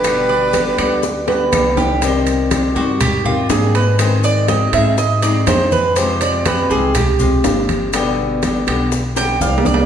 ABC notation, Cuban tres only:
X:1
M:4/4
L:1/8
Q:1/4=122
K:Cm
V:1 name="Cuban tres"
z d =B d2 B2 G | z3 ^F G =F A =B | c d e =e _e d c =B | c d =B A G4 |
z4 z g f d |]